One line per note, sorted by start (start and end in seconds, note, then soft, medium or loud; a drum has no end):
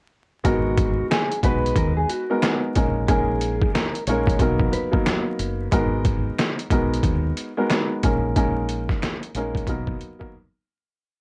0.44 1.01 G#1 loud
0.44 1.37 G#3 loud
0.44 1.37 B3 medium
0.44 1.37 D#4 medium
0.44 1.37 F#4 medium
0.44 1.07 F#4 loud
0.44 1.37 A#4 loud
0.44 kick loud
0.44 closed hi-hat medium
0.78 kick loud
0.78 closed hi-hat medium
1.11 1.40 G#4 medium
1.11 finger snap medium
1.11 snare loud
1.11 closed hi-hat medium
1.32 closed hi-hat medium
1.43 1.71 B1 loud
1.43 2.21 G#3 medium
1.43 2.21 B3 medium
1.43 2.22 D#4 medium
1.43 2.22 F#4 medium
1.43 1.73 B4 medium
1.43 2.22 B4 loud
1.43 kick medium
1.43 closed hi-hat medium
1.66 closed hi-hat soft
1.76 2.04 D#2 loud
1.76 1.95 A#4 medium
1.76 kick medium
1.76 closed hi-hat medium
1.97 2.08 G#4 medium
2.09 2.39 F#4 medium
2.09 closed hi-hat medium
2.30 2.40 G#3 medium
2.30 2.41 B3 medium
2.30 2.41 D#4 medium
2.30 2.41 F#4 medium
2.30 2.41 A#4 loud
2.42 2.73 G#3 medium
2.42 2.73 B3 medium
2.42 2.73 D#4 medium
2.42 2.73 F#4 medium
2.42 2.74 A#4 medium
2.42 finger snap medium
2.42 snare loud
2.42 closed hi-hat medium
2.75 3.60 A#1 loud
2.75 3.06 G#3 medium
2.75 3.06 A#3 medium
2.75 3.07 C#4 medium
2.75 3.07 D#4 medium
2.75 3.07 A#4 medium
2.75 kick medium
2.75 closed hi-hat medium
3.08 4.01 G#3 medium
3.08 4.01 A#3 medium
3.08 4.01 C#4 medium
3.08 4.02 D#4 medium
3.08 3.70 G#4 loud
3.08 4.02 A#4 loud
3.08 kick loud
3.08 closed hi-hat medium
3.41 closed hi-hat medium
3.62 kick loud
3.75 4.04 A#4 medium
3.75 finger snap medium
3.75 snare loud
3.75 closed hi-hat medium
3.95 closed hi-hat medium
4.07 4.35 A#1 loud
4.07 4.41 G#3 loud
4.07 4.39 A#3 medium
4.07 4.41 C#4 medium
4.07 4.40 D#4 medium
4.07 4.40 A#4 loud
4.07 4.37 C#5 medium
4.07 closed hi-hat medium
4.27 kick loud
4.27 closed hi-hat medium
4.39 4.68 B1 loud
4.39 4.89 F#3 loud
4.39 4.89 A#3 medium
4.39 4.89 B3 medium
4.39 4.89 D#4 medium
4.39 4.89 A#4 loud
4.39 kick medium
4.39 closed hi-hat medium
4.60 kick medium
4.73 4.91 B4 medium
4.73 closed hi-hat medium
4.91 5.66 F#3 loud
4.91 5.66 A#3 medium
4.91 5.66 B3 medium
4.91 5.66 D#4 medium
4.91 5.66 A#4 loud
4.91 kick loud
5.06 finger snap medium
5.06 snare loud
5.06 closed hi-hat medium
5.39 5.67 F#1 medium
5.39 closed hi-hat medium
5.71 6.29 G#1 loud
5.71 6.64 G#3 loud
5.71 6.65 B3 medium
5.71 6.65 D#4 medium
5.71 6.65 F#4 medium
5.71 6.65 A#4 loud
5.71 kick loud
5.71 closed hi-hat medium
6.05 kick loud
6.05 closed hi-hat medium
6.39 finger snap medium
6.39 snare loud
6.39 closed hi-hat medium
6.59 closed hi-hat medium
6.70 6.99 B1 loud
6.70 7.49 G#3 medium
6.70 7.49 B3 medium
6.70 7.49 D#4 medium
6.70 7.49 F#4 medium
6.70 7.49 A#4 loud
6.70 kick medium
6.70 closed hi-hat medium
6.94 closed hi-hat medium
7.03 7.32 D#2 loud
7.03 kick medium
7.03 closed hi-hat medium
7.37 closed hi-hat medium
7.57 7.68 G#3 loud
7.57 7.68 B3 medium
7.57 7.69 D#4 medium
7.57 7.69 F#4 medium
7.57 7.69 A#4 loud
7.70 8.01 G#3 medium
7.70 8.01 B3 medium
7.70 8.01 D#4 medium
7.70 8.01 F#4 medium
7.70 8.01 A#4 medium
7.70 finger snap medium
7.70 snare loud
7.70 closed hi-hat medium
8.03 8.88 A#1 medium
8.03 8.34 G#3 medium
8.03 8.34 A#3 medium
8.03 8.34 C#4 medium
8.03 8.34 D#4 medium
8.03 8.34 A#4 medium
8.03 kick medium
8.03 closed hi-hat medium
8.36 9.29 G#3 medium
8.36 9.29 A#3 medium
8.36 9.29 C#4 medium
8.36 9.29 D#4 medium
8.36 9.29 A#4 loud
8.36 kick loud
8.36 closed hi-hat medium
8.69 closed hi-hat medium
8.89 kick loud
8.89 snare soft
9.02 finger snap medium
9.02 snare loud
9.02 closed hi-hat medium
9.23 closed hi-hat medium
9.35 9.63 A#1 loud
9.35 9.68 G#3 medium
9.35 9.67 A#3 medium
9.35 9.68 C#4 medium
9.35 9.67 D#4 medium
9.35 9.68 A#4 loud
9.35 closed hi-hat medium
9.55 kick loud
9.55 closed hi-hat soft
9.67 9.95 B1 loud
9.67 10.16 F#3 loud
9.67 10.16 A#3 medium
9.67 10.16 B3 medium
9.67 10.17 D#4 medium
9.67 10.17 A#4 loud
9.67 kick medium
9.67 closed hi-hat medium
9.87 kick medium
10.01 closed hi-hat medium
10.19 10.33 F#3 loud
10.19 10.33 A#3 medium
10.19 10.33 B3 medium
10.19 10.33 D#4 medium
10.19 10.33 A#4 loud
10.19 kick loud